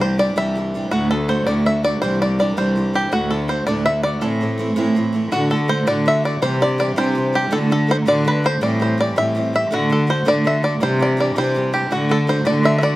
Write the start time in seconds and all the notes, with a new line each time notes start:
Already playing: C2
0.00 E3 G3 D4 G4 C5
0.18 E3 G3 D4 G4 D5
0.36 C2 C3 E3 G3 D4 G4 E5
0.55 E3 G3 D4 G4
0.74 E3 G3 D4 G4
0.91 D2 A2 D3 A3 D4 F#4
1.11 D3 A3 D4 F#4 A4
1.28 D3 A3 D4 F#4 C5
1.46 D2 A2 D3 A3 D4 F#4 D5
1.66 D3 A3 D4 F#4 E5
1.83 D3 A3 D4 F#4 D5
2.01 C2 C3 E3 G3 D4 G4 C5
2.22 E3 G3 D4 G4 D5
2.39 E3 G3 D4 G4 D5
2.57 C2 C3 E3 G3 D4 G4 C5
2.76 E3 G3 D4 G4
2.93 E3 G3 D4 G4
3.11 D2 A2 D3 A3 D4 F#4
3.31 D3 A3 D4 F#4 A4
3.48 D3 A3 D4 F#4 C5
3.66 D2 A2 D3 A3 D4 F#4 D5
3.86 D3 D4 F#4 E5
4.03 D3 A3 D4 F#4 D5
4.21 A2 E3 A3 C4 E4 A4
4.41 E3 A3 C4 E4
4.58 E3 A3 C4 E4
4.76 A2 E3 A3 C4 E4
4.95 E3 A3 C4 E4
5.13 E3 A3 C4 E4
5.31 D2 A2 D3 A3 D4 F#4
5.50 D3 A3 D4 F#4 A4
5.68 D3 A3 D4 F#4 C5
5.86 D2 A2 D3 A3 D4 F#4 D5
6.06 D3 A3 D4 F#4 E5
6.24 D3 A3 D4 F#4 D5
6.41 C3 E3 G3 D4 G4 C5
6.60 E3 G3 D4 G4 D5
6.78 E3 G3 D4 G4 D5
6.96 C3 E3 G3 D4 G4 C5
7.15 E3 G3 D4 G4
7.33 E3 G3 D4 G4
7.51 D2 A2 D3 A3 D4 F#4 A4
7.70 D3 A3 D4 F#4 A4
7.87 D3 A3 D4 F#4 C5
8.06 D2 A2 D3 A3 D4 F#4 D5
8.24 D3 A3 D4 F#4 B4
8.42 D3 A3 D4 F#4 C5
8.61 A2 E3 G3 C4 G4 D5
8.80 E3 G3 C4 G4 C5
8.98 E3 G3 C4 G4 D5
9.16 A2 E3 G3 C4 G4 E5
9.35 E3 G3 C4 G4
9.53 E3 G3 C4 G4 E5
9.70 D2 A2 D3 A3 D4 F#4
9.89 D3 A3 D4 F#4 A4
10.07 D3 A3 D4 F#4 C5
10.25 D2 A2 D3 A3 D4 F#4 D5
10.44 D3 A3 D4 F#4 E5
10.63 D3 A3 D4 F#4 D5
10.80 C3 E3 G3 D4 G4 C5
10.99 E3 G3 D4 G4 D5
11.17 E3 G3 D4 G4 D5
11.35 C3 E3 G3 D4 G4 C5
11.55 E3 G3 D4 G4
11.73 E3 G3 D4 G4
11.91 D2 A2 D3 A3 D4 F#4
12.09 D3 A3 D4 F#4 A4
12.27 D3 A3 D4 F#4 C5
12.45 D2 A2 D3 A3 D4 F#4 D5
12.63 D3 A3 D4 F#4 E5
12.78 D3 A3 E5
12.83 D4 F#4 D5